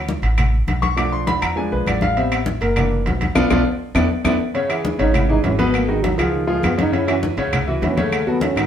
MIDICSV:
0, 0, Header, 1, 5, 480
1, 0, Start_track
1, 0, Tempo, 297915
1, 1568, Time_signature, 4, 2, 24, 8
1, 13963, End_track
2, 0, Start_track
2, 0, Title_t, "Grand piano"
2, 0, Program_c, 0, 0
2, 1324, Note_on_c, 0, 85, 104
2, 1554, Note_on_c, 0, 53, 55
2, 1556, Note_on_c, 0, 57, 49
2, 1558, Note_off_c, 0, 85, 0
2, 1567, Note_on_c, 0, 86, 99
2, 1570, Note_on_c, 0, 62, 64
2, 1800, Note_off_c, 0, 86, 0
2, 1811, Note_on_c, 0, 84, 86
2, 2042, Note_off_c, 0, 84, 0
2, 2046, Note_on_c, 0, 83, 92
2, 2280, Note_off_c, 0, 83, 0
2, 2283, Note_on_c, 0, 82, 88
2, 2473, Note_off_c, 0, 53, 0
2, 2474, Note_off_c, 0, 57, 0
2, 2482, Note_off_c, 0, 62, 0
2, 2512, Note_on_c, 0, 53, 54
2, 2518, Note_off_c, 0, 82, 0
2, 2521, Note_on_c, 0, 56, 55
2, 2525, Note_on_c, 0, 80, 84
2, 2531, Note_on_c, 0, 62, 67
2, 2759, Note_off_c, 0, 80, 0
2, 2774, Note_on_c, 0, 71, 69
2, 3004, Note_off_c, 0, 71, 0
2, 3021, Note_on_c, 0, 74, 74
2, 3248, Note_off_c, 0, 74, 0
2, 3255, Note_on_c, 0, 77, 102
2, 3432, Note_off_c, 0, 53, 0
2, 3437, Note_off_c, 0, 56, 0
2, 3442, Note_off_c, 0, 62, 0
2, 3482, Note_on_c, 0, 55, 54
2, 3485, Note_off_c, 0, 77, 0
2, 3494, Note_on_c, 0, 59, 53
2, 3499, Note_on_c, 0, 76, 78
2, 3508, Note_on_c, 0, 60, 62
2, 3805, Note_off_c, 0, 55, 0
2, 3811, Note_off_c, 0, 59, 0
2, 3818, Note_off_c, 0, 60, 0
2, 4164, Note_off_c, 0, 76, 0
2, 4209, Note_on_c, 0, 70, 78
2, 4442, Note_on_c, 0, 52, 56
2, 4453, Note_on_c, 0, 58, 49
2, 4460, Note_on_c, 0, 62, 62
2, 4765, Note_off_c, 0, 52, 0
2, 4770, Note_off_c, 0, 58, 0
2, 4774, Note_off_c, 0, 62, 0
2, 4879, Note_off_c, 0, 70, 0
2, 5400, Note_on_c, 0, 59, 101
2, 5402, Note_on_c, 0, 62, 103
2, 5403, Note_on_c, 0, 65, 102
2, 5557, Note_off_c, 0, 59, 0
2, 5559, Note_off_c, 0, 62, 0
2, 5559, Note_off_c, 0, 65, 0
2, 5648, Note_on_c, 0, 59, 95
2, 5649, Note_on_c, 0, 62, 101
2, 5649, Note_on_c, 0, 65, 101
2, 5802, Note_off_c, 0, 59, 0
2, 5803, Note_off_c, 0, 62, 0
2, 5803, Note_off_c, 0, 65, 0
2, 6360, Note_on_c, 0, 62, 102
2, 6361, Note_on_c, 0, 64, 92
2, 6363, Note_on_c, 0, 59, 98
2, 6517, Note_off_c, 0, 62, 0
2, 6518, Note_off_c, 0, 64, 0
2, 6519, Note_off_c, 0, 59, 0
2, 6840, Note_on_c, 0, 59, 94
2, 6841, Note_on_c, 0, 62, 92
2, 6841, Note_on_c, 0, 64, 99
2, 6997, Note_off_c, 0, 59, 0
2, 6998, Note_off_c, 0, 62, 0
2, 6998, Note_off_c, 0, 64, 0
2, 7322, Note_on_c, 0, 49, 80
2, 7327, Note_on_c, 0, 61, 76
2, 7333, Note_on_c, 0, 73, 85
2, 7522, Note_off_c, 0, 49, 0
2, 7525, Note_off_c, 0, 61, 0
2, 7528, Note_off_c, 0, 73, 0
2, 7558, Note_on_c, 0, 52, 68
2, 7558, Note_on_c, 0, 64, 74
2, 7564, Note_on_c, 0, 68, 76
2, 7956, Note_off_c, 0, 52, 0
2, 7956, Note_off_c, 0, 64, 0
2, 7960, Note_off_c, 0, 68, 0
2, 8034, Note_on_c, 0, 49, 83
2, 8046, Note_on_c, 0, 61, 85
2, 8048, Note_on_c, 0, 73, 85
2, 8434, Note_off_c, 0, 49, 0
2, 8441, Note_off_c, 0, 61, 0
2, 8442, Note_off_c, 0, 73, 0
2, 8518, Note_on_c, 0, 52, 79
2, 8522, Note_on_c, 0, 64, 73
2, 8533, Note_on_c, 0, 68, 75
2, 8719, Note_off_c, 0, 52, 0
2, 8722, Note_off_c, 0, 64, 0
2, 8728, Note_off_c, 0, 68, 0
2, 8754, Note_on_c, 0, 52, 64
2, 8762, Note_on_c, 0, 64, 69
2, 8764, Note_on_c, 0, 68, 65
2, 8957, Note_off_c, 0, 52, 0
2, 8961, Note_off_c, 0, 64, 0
2, 8963, Note_off_c, 0, 68, 0
2, 9006, Note_on_c, 0, 47, 89
2, 9006, Note_on_c, 0, 59, 96
2, 9006, Note_on_c, 0, 71, 93
2, 9400, Note_off_c, 0, 59, 0
2, 9401, Note_off_c, 0, 47, 0
2, 9401, Note_off_c, 0, 71, 0
2, 9478, Note_on_c, 0, 51, 73
2, 9484, Note_on_c, 0, 66, 71
2, 9485, Note_on_c, 0, 63, 77
2, 9876, Note_off_c, 0, 51, 0
2, 9880, Note_off_c, 0, 63, 0
2, 9880, Note_off_c, 0, 66, 0
2, 9955, Note_on_c, 0, 53, 76
2, 9963, Note_on_c, 0, 65, 73
2, 9965, Note_on_c, 0, 68, 77
2, 10354, Note_off_c, 0, 53, 0
2, 10359, Note_off_c, 0, 65, 0
2, 10360, Note_off_c, 0, 68, 0
2, 10429, Note_on_c, 0, 53, 80
2, 10432, Note_on_c, 0, 65, 83
2, 10437, Note_on_c, 0, 68, 81
2, 10830, Note_off_c, 0, 53, 0
2, 10832, Note_off_c, 0, 65, 0
2, 10835, Note_off_c, 0, 68, 0
2, 10915, Note_on_c, 0, 49, 86
2, 10919, Note_on_c, 0, 61, 87
2, 10927, Note_on_c, 0, 73, 83
2, 11117, Note_off_c, 0, 49, 0
2, 11120, Note_off_c, 0, 61, 0
2, 11124, Note_off_c, 0, 73, 0
2, 11150, Note_on_c, 0, 49, 78
2, 11159, Note_on_c, 0, 61, 86
2, 11163, Note_on_c, 0, 73, 77
2, 11354, Note_off_c, 0, 49, 0
2, 11359, Note_off_c, 0, 61, 0
2, 11361, Note_off_c, 0, 73, 0
2, 11397, Note_on_c, 0, 52, 73
2, 11400, Note_on_c, 0, 64, 82
2, 11406, Note_on_c, 0, 66, 75
2, 11795, Note_off_c, 0, 52, 0
2, 11796, Note_off_c, 0, 64, 0
2, 11800, Note_off_c, 0, 66, 0
2, 11889, Note_on_c, 0, 49, 90
2, 11896, Note_on_c, 0, 61, 86
2, 11898, Note_on_c, 0, 73, 88
2, 12282, Note_off_c, 0, 49, 0
2, 12286, Note_off_c, 0, 61, 0
2, 12287, Note_off_c, 0, 73, 0
2, 12361, Note_on_c, 0, 52, 76
2, 12366, Note_on_c, 0, 64, 74
2, 12376, Note_on_c, 0, 66, 79
2, 12560, Note_off_c, 0, 52, 0
2, 12563, Note_off_c, 0, 64, 0
2, 12569, Note_off_c, 0, 66, 0
2, 12595, Note_on_c, 0, 52, 70
2, 12602, Note_on_c, 0, 64, 72
2, 12614, Note_on_c, 0, 66, 66
2, 12797, Note_off_c, 0, 52, 0
2, 12801, Note_off_c, 0, 64, 0
2, 12808, Note_off_c, 0, 66, 0
2, 12836, Note_on_c, 0, 49, 92
2, 12843, Note_on_c, 0, 61, 93
2, 12853, Note_on_c, 0, 73, 95
2, 13234, Note_off_c, 0, 49, 0
2, 13238, Note_off_c, 0, 61, 0
2, 13244, Note_off_c, 0, 73, 0
2, 13321, Note_on_c, 0, 54, 72
2, 13324, Note_on_c, 0, 66, 77
2, 13338, Note_on_c, 0, 69, 71
2, 13716, Note_off_c, 0, 54, 0
2, 13718, Note_off_c, 0, 66, 0
2, 13726, Note_off_c, 0, 69, 0
2, 13798, Note_on_c, 0, 63, 71
2, 13799, Note_on_c, 0, 51, 74
2, 13804, Note_on_c, 0, 66, 79
2, 13963, Note_off_c, 0, 51, 0
2, 13963, Note_off_c, 0, 63, 0
2, 13963, Note_off_c, 0, 66, 0
2, 13963, End_track
3, 0, Start_track
3, 0, Title_t, "Trombone"
3, 0, Program_c, 1, 57
3, 8062, Note_on_c, 1, 63, 89
3, 8287, Note_on_c, 1, 64, 94
3, 8312, Note_off_c, 1, 63, 0
3, 8507, Note_off_c, 1, 64, 0
3, 8517, Note_on_c, 1, 63, 94
3, 8765, Note_on_c, 1, 61, 82
3, 8789, Note_off_c, 1, 63, 0
3, 8985, Note_off_c, 1, 61, 0
3, 8995, Note_on_c, 1, 59, 81
3, 9249, Note_on_c, 1, 58, 72
3, 9273, Note_off_c, 1, 59, 0
3, 9469, Note_on_c, 1, 56, 79
3, 9493, Note_off_c, 1, 58, 0
3, 9725, Note_on_c, 1, 54, 79
3, 9749, Note_off_c, 1, 56, 0
3, 9950, Note_off_c, 1, 54, 0
3, 9960, Note_on_c, 1, 53, 81
3, 10198, Note_on_c, 1, 51, 69
3, 10223, Note_off_c, 1, 53, 0
3, 10423, Note_off_c, 1, 51, 0
3, 10433, Note_on_c, 1, 56, 82
3, 10690, Note_on_c, 1, 59, 74
3, 10714, Note_off_c, 1, 56, 0
3, 10909, Note_off_c, 1, 59, 0
3, 10919, Note_on_c, 1, 63, 100
3, 11173, Note_on_c, 1, 64, 94
3, 11197, Note_off_c, 1, 63, 0
3, 11403, Note_off_c, 1, 64, 0
3, 11413, Note_on_c, 1, 61, 97
3, 11555, Note_off_c, 1, 61, 0
3, 12624, Note_on_c, 1, 61, 78
3, 12865, Note_on_c, 1, 57, 83
3, 12889, Note_off_c, 1, 61, 0
3, 13332, Note_on_c, 1, 59, 91
3, 13356, Note_off_c, 1, 57, 0
3, 13581, Note_on_c, 1, 61, 84
3, 13605, Note_off_c, 1, 59, 0
3, 13813, Note_off_c, 1, 61, 0
3, 13963, End_track
4, 0, Start_track
4, 0, Title_t, "Upright bass"
4, 0, Program_c, 2, 32
4, 0, Note_on_c, 2, 38, 76
4, 275, Note_off_c, 2, 38, 0
4, 357, Note_on_c, 2, 33, 88
4, 1031, Note_off_c, 2, 33, 0
4, 1082, Note_on_c, 2, 35, 77
4, 2197, Note_off_c, 2, 35, 0
4, 2287, Note_on_c, 2, 40, 89
4, 2734, Note_off_c, 2, 40, 0
4, 2772, Note_on_c, 2, 35, 71
4, 2993, Note_off_c, 2, 35, 0
4, 3006, Note_on_c, 2, 33, 87
4, 4119, Note_off_c, 2, 33, 0
4, 4202, Note_on_c, 2, 30, 97
4, 4875, Note_off_c, 2, 30, 0
4, 4924, Note_on_c, 2, 35, 89
4, 5373, Note_off_c, 2, 35, 0
4, 5396, Note_on_c, 2, 35, 88
4, 5581, Note_off_c, 2, 35, 0
4, 5641, Note_on_c, 2, 35, 102
4, 5824, Note_off_c, 2, 35, 0
4, 6358, Note_on_c, 2, 40, 97
4, 6542, Note_off_c, 2, 40, 0
4, 6836, Note_on_c, 2, 40, 92
4, 7021, Note_off_c, 2, 40, 0
4, 8042, Note_on_c, 2, 32, 97
4, 8714, Note_off_c, 2, 32, 0
4, 8760, Note_on_c, 2, 32, 85
4, 9876, Note_off_c, 2, 32, 0
4, 9958, Note_on_c, 2, 37, 90
4, 10632, Note_off_c, 2, 37, 0
4, 10673, Note_on_c, 2, 42, 84
4, 11791, Note_off_c, 2, 42, 0
4, 11875, Note_on_c, 2, 37, 91
4, 12550, Note_off_c, 2, 37, 0
4, 12601, Note_on_c, 2, 39, 96
4, 13715, Note_off_c, 2, 39, 0
4, 13791, Note_on_c, 2, 32, 91
4, 13963, Note_off_c, 2, 32, 0
4, 13963, End_track
5, 0, Start_track
5, 0, Title_t, "Drums"
5, 138, Note_on_c, 9, 63, 99
5, 300, Note_off_c, 9, 63, 0
5, 373, Note_on_c, 9, 65, 67
5, 375, Note_on_c, 9, 63, 33
5, 534, Note_off_c, 9, 65, 0
5, 536, Note_off_c, 9, 63, 0
5, 609, Note_on_c, 9, 65, 91
5, 609, Note_on_c, 9, 75, 68
5, 618, Note_on_c, 9, 63, 33
5, 618, Note_on_c, 9, 64, 81
5, 770, Note_off_c, 9, 65, 0
5, 770, Note_off_c, 9, 75, 0
5, 779, Note_off_c, 9, 63, 0
5, 779, Note_off_c, 9, 64, 0
5, 864, Note_on_c, 9, 63, 34
5, 1025, Note_off_c, 9, 63, 0
5, 1093, Note_on_c, 9, 63, 87
5, 1098, Note_on_c, 9, 65, 67
5, 1254, Note_off_c, 9, 63, 0
5, 1259, Note_off_c, 9, 65, 0
5, 1334, Note_on_c, 9, 65, 66
5, 1336, Note_on_c, 9, 63, 85
5, 1495, Note_off_c, 9, 65, 0
5, 1497, Note_off_c, 9, 63, 0
5, 1571, Note_on_c, 9, 65, 87
5, 1572, Note_on_c, 9, 75, 73
5, 1576, Note_on_c, 9, 63, 37
5, 1732, Note_off_c, 9, 65, 0
5, 1733, Note_off_c, 9, 75, 0
5, 1737, Note_off_c, 9, 63, 0
5, 1812, Note_on_c, 9, 63, 36
5, 1973, Note_off_c, 9, 63, 0
5, 2050, Note_on_c, 9, 63, 99
5, 2050, Note_on_c, 9, 65, 69
5, 2211, Note_off_c, 9, 63, 0
5, 2212, Note_off_c, 9, 65, 0
5, 2291, Note_on_c, 9, 65, 94
5, 2294, Note_on_c, 9, 63, 36
5, 2295, Note_on_c, 9, 75, 75
5, 2452, Note_off_c, 9, 65, 0
5, 2455, Note_off_c, 9, 63, 0
5, 2456, Note_off_c, 9, 75, 0
5, 2533, Note_on_c, 9, 63, 32
5, 2694, Note_off_c, 9, 63, 0
5, 2773, Note_on_c, 9, 63, 32
5, 2934, Note_off_c, 9, 63, 0
5, 3005, Note_on_c, 9, 63, 91
5, 3019, Note_on_c, 9, 65, 85
5, 3025, Note_on_c, 9, 75, 62
5, 3166, Note_off_c, 9, 63, 0
5, 3181, Note_off_c, 9, 65, 0
5, 3186, Note_off_c, 9, 75, 0
5, 3240, Note_on_c, 9, 63, 93
5, 3259, Note_on_c, 9, 65, 68
5, 3401, Note_off_c, 9, 63, 0
5, 3420, Note_off_c, 9, 65, 0
5, 3487, Note_on_c, 9, 63, 32
5, 3497, Note_on_c, 9, 65, 62
5, 3649, Note_off_c, 9, 63, 0
5, 3658, Note_off_c, 9, 65, 0
5, 3731, Note_on_c, 9, 63, 36
5, 3734, Note_on_c, 9, 65, 101
5, 3741, Note_on_c, 9, 75, 62
5, 3892, Note_off_c, 9, 63, 0
5, 3895, Note_off_c, 9, 65, 0
5, 3902, Note_off_c, 9, 75, 0
5, 3964, Note_on_c, 9, 63, 104
5, 4125, Note_off_c, 9, 63, 0
5, 4217, Note_on_c, 9, 63, 35
5, 4217, Note_on_c, 9, 65, 69
5, 4378, Note_off_c, 9, 63, 0
5, 4378, Note_off_c, 9, 65, 0
5, 4449, Note_on_c, 9, 65, 88
5, 4458, Note_on_c, 9, 63, 35
5, 4458, Note_on_c, 9, 64, 88
5, 4459, Note_on_c, 9, 75, 71
5, 4610, Note_off_c, 9, 65, 0
5, 4619, Note_off_c, 9, 63, 0
5, 4619, Note_off_c, 9, 64, 0
5, 4620, Note_off_c, 9, 75, 0
5, 4703, Note_on_c, 9, 63, 35
5, 4864, Note_off_c, 9, 63, 0
5, 4931, Note_on_c, 9, 65, 67
5, 4931, Note_on_c, 9, 66, 68
5, 4952, Note_on_c, 9, 63, 90
5, 5092, Note_off_c, 9, 65, 0
5, 5092, Note_off_c, 9, 66, 0
5, 5113, Note_off_c, 9, 63, 0
5, 5171, Note_on_c, 9, 65, 76
5, 5185, Note_on_c, 9, 63, 90
5, 5332, Note_off_c, 9, 65, 0
5, 5346, Note_off_c, 9, 63, 0
5, 5405, Note_on_c, 9, 65, 88
5, 5407, Note_on_c, 9, 63, 100
5, 5408, Note_on_c, 9, 75, 108
5, 5566, Note_off_c, 9, 65, 0
5, 5568, Note_off_c, 9, 63, 0
5, 5569, Note_off_c, 9, 75, 0
5, 5647, Note_on_c, 9, 65, 101
5, 5647, Note_on_c, 9, 75, 99
5, 5658, Note_on_c, 9, 63, 106
5, 5808, Note_off_c, 9, 65, 0
5, 5808, Note_off_c, 9, 75, 0
5, 5819, Note_off_c, 9, 63, 0
5, 6361, Note_on_c, 9, 65, 97
5, 6373, Note_on_c, 9, 63, 104
5, 6374, Note_on_c, 9, 75, 109
5, 6522, Note_off_c, 9, 65, 0
5, 6534, Note_off_c, 9, 63, 0
5, 6536, Note_off_c, 9, 75, 0
5, 6845, Note_on_c, 9, 63, 98
5, 6845, Note_on_c, 9, 65, 91
5, 6848, Note_on_c, 9, 75, 106
5, 7006, Note_off_c, 9, 63, 0
5, 7006, Note_off_c, 9, 65, 0
5, 7009, Note_off_c, 9, 75, 0
5, 7328, Note_on_c, 9, 65, 62
5, 7333, Note_on_c, 9, 63, 34
5, 7489, Note_off_c, 9, 65, 0
5, 7494, Note_off_c, 9, 63, 0
5, 7567, Note_on_c, 9, 63, 35
5, 7568, Note_on_c, 9, 65, 89
5, 7577, Note_on_c, 9, 75, 64
5, 7728, Note_off_c, 9, 63, 0
5, 7730, Note_off_c, 9, 65, 0
5, 7739, Note_off_c, 9, 75, 0
5, 7809, Note_on_c, 9, 63, 106
5, 7971, Note_off_c, 9, 63, 0
5, 8048, Note_on_c, 9, 65, 68
5, 8056, Note_on_c, 9, 63, 33
5, 8209, Note_off_c, 9, 65, 0
5, 8217, Note_off_c, 9, 63, 0
5, 8285, Note_on_c, 9, 65, 91
5, 8302, Note_on_c, 9, 63, 36
5, 8302, Note_on_c, 9, 64, 88
5, 8305, Note_on_c, 9, 75, 66
5, 8446, Note_off_c, 9, 65, 0
5, 8463, Note_off_c, 9, 63, 0
5, 8463, Note_off_c, 9, 64, 0
5, 8466, Note_off_c, 9, 75, 0
5, 8533, Note_on_c, 9, 63, 34
5, 8694, Note_off_c, 9, 63, 0
5, 8762, Note_on_c, 9, 65, 62
5, 8762, Note_on_c, 9, 66, 70
5, 8768, Note_on_c, 9, 63, 93
5, 8923, Note_off_c, 9, 65, 0
5, 8923, Note_off_c, 9, 66, 0
5, 8929, Note_off_c, 9, 63, 0
5, 9003, Note_on_c, 9, 65, 71
5, 9017, Note_on_c, 9, 63, 85
5, 9164, Note_off_c, 9, 65, 0
5, 9178, Note_off_c, 9, 63, 0
5, 9246, Note_on_c, 9, 65, 83
5, 9260, Note_on_c, 9, 63, 36
5, 9265, Note_on_c, 9, 75, 69
5, 9407, Note_off_c, 9, 65, 0
5, 9421, Note_off_c, 9, 63, 0
5, 9426, Note_off_c, 9, 75, 0
5, 9499, Note_on_c, 9, 63, 33
5, 9661, Note_off_c, 9, 63, 0
5, 9731, Note_on_c, 9, 65, 65
5, 9733, Note_on_c, 9, 63, 102
5, 9892, Note_off_c, 9, 65, 0
5, 9894, Note_off_c, 9, 63, 0
5, 9973, Note_on_c, 9, 65, 94
5, 9978, Note_on_c, 9, 63, 34
5, 9981, Note_on_c, 9, 75, 70
5, 10134, Note_off_c, 9, 65, 0
5, 10139, Note_off_c, 9, 63, 0
5, 10142, Note_off_c, 9, 75, 0
5, 10217, Note_on_c, 9, 63, 35
5, 10378, Note_off_c, 9, 63, 0
5, 10452, Note_on_c, 9, 63, 35
5, 10613, Note_off_c, 9, 63, 0
5, 10686, Note_on_c, 9, 63, 91
5, 10697, Note_on_c, 9, 75, 68
5, 10700, Note_on_c, 9, 65, 84
5, 10700, Note_on_c, 9, 66, 68
5, 10847, Note_off_c, 9, 63, 0
5, 10858, Note_off_c, 9, 75, 0
5, 10861, Note_off_c, 9, 65, 0
5, 10861, Note_off_c, 9, 66, 0
5, 10935, Note_on_c, 9, 63, 85
5, 10935, Note_on_c, 9, 65, 69
5, 11096, Note_off_c, 9, 63, 0
5, 11096, Note_off_c, 9, 65, 0
5, 11173, Note_on_c, 9, 65, 65
5, 11177, Note_on_c, 9, 63, 32
5, 11334, Note_off_c, 9, 65, 0
5, 11338, Note_off_c, 9, 63, 0
5, 11411, Note_on_c, 9, 65, 93
5, 11413, Note_on_c, 9, 63, 35
5, 11416, Note_on_c, 9, 75, 60
5, 11572, Note_off_c, 9, 65, 0
5, 11574, Note_off_c, 9, 63, 0
5, 11578, Note_off_c, 9, 75, 0
5, 11648, Note_on_c, 9, 63, 97
5, 11809, Note_off_c, 9, 63, 0
5, 11886, Note_on_c, 9, 63, 34
5, 11886, Note_on_c, 9, 65, 65
5, 12047, Note_off_c, 9, 65, 0
5, 12048, Note_off_c, 9, 63, 0
5, 12129, Note_on_c, 9, 65, 95
5, 12132, Note_on_c, 9, 63, 34
5, 12132, Note_on_c, 9, 64, 87
5, 12133, Note_on_c, 9, 75, 74
5, 12290, Note_off_c, 9, 65, 0
5, 12293, Note_off_c, 9, 63, 0
5, 12293, Note_off_c, 9, 64, 0
5, 12294, Note_off_c, 9, 75, 0
5, 12371, Note_on_c, 9, 63, 34
5, 12533, Note_off_c, 9, 63, 0
5, 12609, Note_on_c, 9, 63, 84
5, 12614, Note_on_c, 9, 65, 60
5, 12614, Note_on_c, 9, 66, 62
5, 12771, Note_off_c, 9, 63, 0
5, 12775, Note_off_c, 9, 65, 0
5, 12775, Note_off_c, 9, 66, 0
5, 12850, Note_on_c, 9, 63, 84
5, 12851, Note_on_c, 9, 65, 65
5, 13011, Note_off_c, 9, 63, 0
5, 13012, Note_off_c, 9, 65, 0
5, 13090, Note_on_c, 9, 75, 75
5, 13092, Note_on_c, 9, 65, 81
5, 13100, Note_on_c, 9, 63, 36
5, 13251, Note_off_c, 9, 75, 0
5, 13253, Note_off_c, 9, 65, 0
5, 13261, Note_off_c, 9, 63, 0
5, 13325, Note_on_c, 9, 63, 33
5, 13486, Note_off_c, 9, 63, 0
5, 13555, Note_on_c, 9, 63, 94
5, 13572, Note_on_c, 9, 65, 69
5, 13716, Note_off_c, 9, 63, 0
5, 13733, Note_off_c, 9, 65, 0
5, 13799, Note_on_c, 9, 63, 33
5, 13812, Note_on_c, 9, 65, 93
5, 13813, Note_on_c, 9, 75, 69
5, 13961, Note_off_c, 9, 63, 0
5, 13963, Note_off_c, 9, 65, 0
5, 13963, Note_off_c, 9, 75, 0
5, 13963, End_track
0, 0, End_of_file